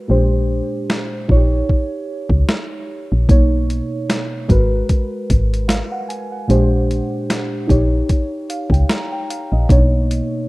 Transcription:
0.00 0.08 G#3 medium
0.00 0.11 F#4 medium
0.00 0.10 A#4 medium
0.00 0.11 B4 medium
0.08 0.62 A#1 loud
0.08 1.28 A#2 medium
0.08 1.29 G#3 medium
0.08 1.29 D4 medium
0.08 1.30 G4 medium
0.08 1.30 C5 medium
0.90 snare medium
1.28 1.63 A#1 medium
1.28 2.72 D#4 medium
1.28 1.37 F4 medium
1.28 2.73 C#5 medium
1.28 kick medium
1.36 2.76 G4 medium
1.69 kick medium
2.29 2.45 C#2 medium
2.29 kick medium
2.49 snare loud
3.12 3.26 A#1 medium
3.28 3.81 B1 loud
3.28 4.48 B2 medium
3.28 4.49 A#3 medium
3.28 4.49 D#4 medium
3.28 4.50 C#5 medium
3.28 kick loud
3.28 closed hi-hat medium
3.70 closed hi-hat medium
4.10 snare medium
4.10 closed hi-hat medium
4.48 4.83 G#1 loud
4.48 5.92 G#3 medium
4.48 5.92 F#4 medium
4.48 5.93 A#4 medium
4.48 5.93 B4 medium
4.48 kick medium
4.48 closed hi-hat medium
4.89 kick medium
4.89 closed hi-hat medium
5.30 5.82 G#1 medium
5.30 kick medium
5.30 closed hi-hat medium
5.54 closed hi-hat medium
5.68 5.90 F5 medium
5.68 snare loud
5.68 closed hi-hat medium
5.92 6.08 F#5 medium
6.08 6.30 G#5 medium
6.08 closed hi-hat medium
6.32 6.70 F#5 medium
6.48 7.02 A#1 medium
6.48 7.68 A#2 medium
6.48 7.69 G#3 medium
6.48 7.69 D4 medium
6.48 7.68 G4 medium
6.48 7.70 C5 medium
6.48 closed hi-hat medium
6.91 closed hi-hat medium
7.30 snare medium
7.30 closed hi-hat medium
7.67 8.03 A#1 loud
7.67 9.11 D#4 medium
7.67 9.12 G4 medium
7.67 9.13 C#5 medium
7.67 kick medium
7.67 closed hi-hat medium
8.09 kick medium
8.09 closed hi-hat medium
8.50 8.71 F5 medium
8.50 closed hi-hat medium
8.70 8.85 C#2 medium
8.70 8.88 G5 medium
8.70 kick medium
8.74 closed hi-hat medium
8.90 9.11 A#5 medium
8.90 snare medium
8.90 closed hi-hat medium
9.12 9.28 G5 medium
9.30 9.51 F5 medium
9.30 closed hi-hat medium
9.52 9.66 A#1 medium
9.52 9.90 D#5 medium
9.69 10.22 B1 loud
9.69 10.48 B2 medium
9.69 10.48 A#3 medium
9.69 9.77 D4 medium
9.69 10.48 C#5 medium
9.69 kick loud
9.69 closed hi-hat medium
9.77 10.48 D#4 medium
10.11 closed hi-hat medium

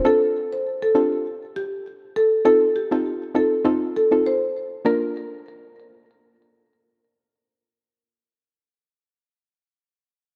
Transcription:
0.05 0.88 C4 medium
0.05 0.88 D4 medium
0.05 0.88 F4 medium
0.05 0.89 A4 loud
0.05 0.31 A4 loud
0.53 0.64 C5 medium
0.82 0.94 A4 medium
0.95 1.23 C4 medium
0.95 1.23 D4 medium
0.95 1.23 F4 medium
0.95 1.10 G4 medium
0.95 1.23 A4 medium
1.56 1.70 G4 medium
2.16 2.30 A4 medium
2.45 2.65 C4 medium
2.45 2.65 D#4 medium
2.45 2.65 F4 medium
2.45 2.65 A4 loud
2.45 2.59 A4 loud
2.76 2.89 G4 medium
2.91 3.32 C4 medium
2.91 3.32 D#4 medium
2.91 3.32 F4 medium
2.91 3.03 G4 medium
2.91 3.32 A4 medium
3.35 3.63 C4 medium
3.35 3.63 D#4 medium
3.35 3.63 F4 medium
3.35 3.63 A4 medium
3.35 3.50 A4 medium
3.64 4.07 C4 medium
3.64 4.07 D#4 medium
3.64 4.08 F4 medium
3.64 4.08 A4 loud
3.96 4.10 A4 medium
4.11 4.29 C4 medium
4.11 4.30 D#4 medium
4.11 4.30 F4 medium
4.11 4.30 A4 medium
4.26 4.69 C5 medium
4.85 8.71 A#3 medium
4.85 8.71 D4 medium
4.85 8.71 F4 medium
4.85 8.71 A#4 loud
4.85 6.62 A#4 medium

